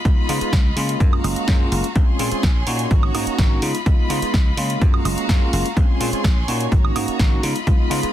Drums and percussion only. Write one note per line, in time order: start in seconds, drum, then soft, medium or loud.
0.05 kick loud
0.05 closed hi-hat medium
0.29 open hi-hat loud
0.41 closed hi-hat medium
0.53 kick loud
0.53 snare loud
0.53 closed hi-hat medium
0.77 open hi-hat loud
0.89 closed hi-hat medium
1.00 kick loud
1.00 closed hi-hat medium
1.13 high woodblock medium
1.24 open hi-hat loud
1.24 high woodblock medium
1.36 closed hi-hat medium
1.48 kick loud
1.48 snare loud
1.48 closed hi-hat medium
1.72 open hi-hat medium
1.84 closed hi-hat medium
1.96 kick loud
1.96 closed hi-hat medium
2.19 open hi-hat loud
2.32 closed hi-hat medium
2.43 kick loud
2.43 snare loud
2.43 closed hi-hat medium
2.67 open hi-hat loud
2.79 closed hi-hat medium
2.91 kick loud
2.91 closed hi-hat medium
3.03 high woodblock medium
3.15 open hi-hat loud
3.15 high woodblock medium
3.27 closed hi-hat medium
3.38 kick loud
3.38 snare loud
3.38 closed hi-hat medium
3.62 open hi-hat medium
3.75 closed hi-hat medium
3.86 kick loud
3.86 closed hi-hat medium
4.10 open hi-hat loud
4.22 closed hi-hat medium
4.34 kick loud
4.34 snare loud
4.34 closed hi-hat soft
4.57 open hi-hat medium
4.70 closed hi-hat medium
4.81 kick loud
4.81 closed hi-hat soft
4.94 high woodblock medium
5.05 open hi-hat loud
5.05 high woodblock medium
5.18 closed hi-hat medium
5.29 kick loud
5.29 snare loud
5.29 closed hi-hat medium
5.53 open hi-hat medium
5.66 closed hi-hat medium
5.77 kick loud
5.77 closed hi-hat medium
6.01 open hi-hat loud
6.13 closed hi-hat medium
6.24 kick loud
6.24 snare loud
6.24 closed hi-hat medium
6.48 open hi-hat medium
6.61 closed hi-hat medium
6.72 kick loud
6.72 closed hi-hat soft
6.85 high woodblock medium
6.96 open hi-hat loud
6.96 high woodblock medium
7.08 closed hi-hat medium
7.19 kick loud
7.19 snare loud
7.19 closed hi-hat medium
7.43 open hi-hat medium
7.56 closed hi-hat medium
7.67 kick loud
7.67 closed hi-hat medium
7.91 open hi-hat loud
8.03 closed hi-hat medium